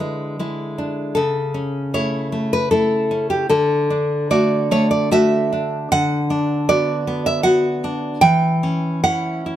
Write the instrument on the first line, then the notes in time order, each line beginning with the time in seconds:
nylon-string guitar
Already playing: D3 D4 E4 B4
0.00 G#3
0.39 G#3 E4
0.78 D4
1.15 C#3 A4
1.54 C#4
1.94 A3 E4 C#5
2.32 A3
2.53 B4
2.71 A3 E4 A4
3.11 C#4
3.30 G4
3.49 D3 A4
3.90 D4
4.31 A3 F#4 D5
4.71 A3 C#5
4.91 D5
5.11 A3 F#4 E5
5.53 D4
5.92 D3 F#5
6.30 D4
6.69 B3 F#4 D5
7.07 B3
7.26 E5
7.43 B3 F#4 F#5
7.84 D4
8.21 E3 G5
8.63 C#4
9.04 C#4 E4 F#5
9.46 E4